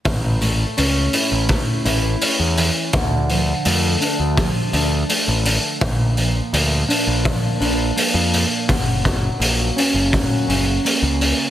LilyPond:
<<
  \new Staff \with { instrumentName = "Steel-string acoustic guitar" } { \time 4/4 \key d \major \tempo 4 = 83 a,8 a8 cis'8 e'8 a8 e'8 cis'8 e8 | d8 f8 a8 d'8 f8 d'8 a8 d8 | bes,8 f8 bes8 d'8 f8 d'8 bes8 bes,8 | fis,8 fis8 ais8 cis'8 fis8 cis'8 ais8 cis8 | }
  \new Staff \with { instrumentName = "Picked electric bass" } { \clef bass \time 4/4 \key d \major a,,4 cis,8 r16 a,,8 r16 a,,8 r16 e,8 r16 | d,4 f,8 r16 d,8 r16 d,8 r16 a,,8 r16 | bes,,4 d,8 r16 bes,,8 r16 bes,,8 r16 f,8 r16 | fis,,4 ais,,8 r16 fis,,8 r16 fis,,8 r16 cis,8 r16 | }
  \new DrumStaff \with { instrumentName = "Drums" } \drummode { \time 4/4 <hho bd>8 hho8 hho8 hho8 <hho bd>8 hho8 hho8 hho8 | <hho bd>8 hho8 hho8 hho8 <hho bd>8 hho8 hho8 hho8 | <hho bd>8 hho8 hho8 hho8 <hho bd>8 hho8 hho8 hho8 | <hho bd>8 <hho bd>8 hho8 hho8 <hho bd>8 hho8 hho8 hho8 | }
>>